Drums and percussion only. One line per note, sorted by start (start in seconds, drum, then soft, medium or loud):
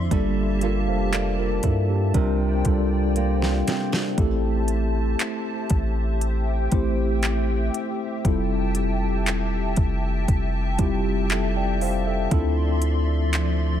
0.11 kick loud
0.11 closed hi-hat medium
0.61 closed hi-hat medium
1.13 clap loud
1.13 closed hi-hat medium
1.63 kick medium
1.63 closed hi-hat medium
2.14 kick medium
2.14 closed hi-hat medium
2.65 kick medium
2.65 closed hi-hat medium
3.16 closed hi-hat medium
3.42 snare medium
3.68 snare medium
3.68 closed hi-hat medium
3.93 snare medium
4.18 kick loud
4.18 closed hi-hat medium
4.68 closed hi-hat medium
5.20 clap loud
5.20 closed hi-hat medium
5.70 kick medium
5.70 closed hi-hat medium
6.21 closed hi-hat medium
6.72 kick medium
6.72 closed hi-hat medium
7.23 clap loud
7.23 closed hi-hat medium
7.74 closed hi-hat medium
8.25 kick loud
8.25 closed hi-hat medium
8.75 closed hi-hat medium
9.27 clap loud
9.27 closed hi-hat medium
9.76 kick medium
9.76 closed hi-hat medium
10.28 kick medium
10.28 closed hi-hat medium
10.79 kick medium
10.79 closed hi-hat medium
11.30 clap loud
11.30 closed hi-hat medium
11.81 open hi-hat medium
12.31 kick loud
12.31 closed hi-hat medium
12.82 closed hi-hat medium
13.33 clap loud
13.33 closed hi-hat medium